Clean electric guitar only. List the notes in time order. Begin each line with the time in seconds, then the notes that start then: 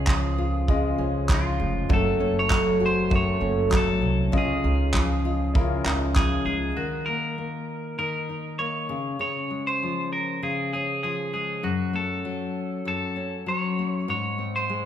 Already playing: G#4
1.34 F4
1.93 A4
2.39 C#5
2.86 C5
3.16 C#5
3.77 A4
4.38 G#4
6.17 G#4
6.46 G#4
6.77 F#4
7.06 A#4
7.99 A#4
8.59 C#5
9.21 C#5
9.67 C5
10.13 A#4
10.43 G#4
10.73 G#4
11.03 G#4
11.34 G#4
11.64 F#4
11.96 A4
12.88 A4
13.48 C#5
14.10 C#5
14.56 C5